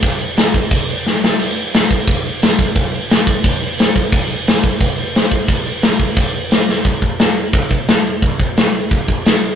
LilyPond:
\new DrumStaff \with { instrumentName = "Drums" } \drummode { \time 4/4 \tempo 4 = 176 <cymc bd>8 cymc8 <cymc sn>8 <cymc bd>8 <cymc bd>8 cymc8 sn8 sn8 | cymc8 cymc8 <cymc sn>8 <cymc bd>8 <cymc bd>8 cymc8 <cymc sn>8 <cymc bd>8 | <cymc bd>8 cymc8 <cymc sn>8 <cymc bd>8 <cymc bd>8 cymc8 <cymc sn>8 <cymc bd>8 | <cymc bd>8 cymc8 <cymc sn>8 <cymc bd>8 <cymc bd>8 cymc8 <cymc sn>8 <cymc bd>8 |
<cymc bd>8 cymc8 <cymc sn>8 <cymc bd>8 <cymc bd>8 cymc8 <cymc sn>8 sn8 | <cymc bd>8 bd8 <cymc sn>4 <cymc bd>8 bd8 <cymc sn>4 | <cymc bd>8 bd8 <cymc sn>4 <cymc bd>8 bd8 <cymc sn>4 | }